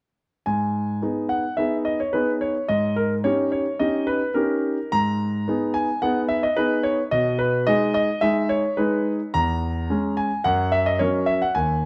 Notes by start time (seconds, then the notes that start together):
0.46 G#2 G#5
1.02 B3 D#4 G#4
1.29 F#5
1.57 B3 D#4 G#4 E5
1.85 D#5
2.00 C#5
2.13 B3 D#4 G#4 B4
2.41 C#5
2.68 G#2 D#5
2.96 A#4
3.24 C#4 D#4 G4 C#5
3.52 C#5
3.79 C#4 D#4 G4 D#5
4.07 B4
4.34 C#4 D#4 G4 A#4
4.92 G#2 A#5
5.48 B3 D#4 G#4
5.74 G#5
6.02 B3 D#4 G#4 F#5
6.29 E5
6.43 D#5
6.57 B3 D#4 G#4 B4
6.83 C#5
7.11 B2 D#5
7.39 B4
7.67 G#3 D#4 G#4 D#5
7.94 D#5
8.21 G#3 D#4 G#4 E5
8.49 C#5
8.77 G#3 D#4 G#4 B4
9.34 E2 A#5
9.90 G#3 C#4 G#4
10.17 G#5
10.44 F#2 F#5
10.72 E5
10.86 D#5
10.99 F#3 C#4 A#4 C#5
11.26 E5
11.42 F#5
11.55 D#2 G#5